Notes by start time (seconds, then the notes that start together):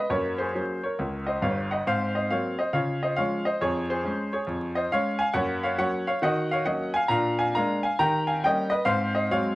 Already playing: B4 D#5
0.10 F#2 A#3 A#4 C#5
0.38 G#4 C5
0.55 F#3 A#3 C#4
0.84 A#4 C#5
0.99 C#2
1.27 C5 D#5
1.42 G1 G2 C#5 F5
1.71 D#5 F#5
1.87 G#2 C4 C5 F5
2.15 C5 D#5
2.30 F#3 A#3 C4 C#5 F5
2.59 C5 D#5
2.73 C#3 F4 C#5 F5
3.03 C5 D#5
3.16 F3 G#3 C#4 C#5 F5
3.45 C5 D#5
3.61 F2 G#4 C#5
3.90 G#4 C5
4.04 G#3 C#4
4.33 G#4 C#5
4.47 F2
4.75 C5 D#5
4.92 G#3 C#4 C#5 F5
5.19 F5 G#5
5.33 F#2 A#3 C#5 F#5
5.63 C#5 F5
5.78 F#3 A#3 C#4 C#5 F#5
6.07 C#5 F5
6.22 D#3 F#4 D#5 F#5
6.51 C#5 F5
6.65 F#3 A#3 C#4 D#5 F#5
6.94 F5 G#5
7.08 A#2 D4 F5 A#5
7.39 F5 G#5
7.55 G#3 A#3 D4 F5 A#5
7.83 F5 G#5
7.99 D#3 G4 G5 A#5
8.27 F5 G#5
8.44 G3 A#3 C#4 D#5 G5
8.70 B4 D#5
8.85 G#2 C4 C5 F5
9.15 C5 D#5
9.31 F#3 G#3 C4 C#5 F5